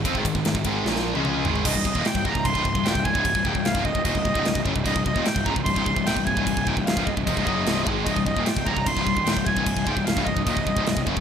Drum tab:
CC |----------------|x---x---x---x---|x---x---x---x---|x---x---x---x---|
RD |x-x-x-x---------|----------------|----------------|----------------|
SD |----o---oo------|----o-------o---|----o-------o---|----o-------o---|
T1 |-----------o----|----------------|----------------|----------------|
T2 |------------o---|----------------|----------------|----------------|
FT |--------------oo|----------------|----------------|----------------|
BD |oooo-oo---------|oooo-ooooooo-ooo|oooo-ooooooo-ooo|oooo-ooooooo-ooo|

CC |x---x---x---x---|x---x---x---x---|x---x---x---x---|
RD |----------------|----------------|----------------|
SD |----o-------o---|----o-------o---|----o-------o---|
T1 |----------------|----------------|----------------|
T2 |----------------|----------------|----------------|
FT |----------------|----------------|----------------|
BD |oooo-oooooo---o-|oooo-ooooooo-ooo|oooo-ooooooo-ooo|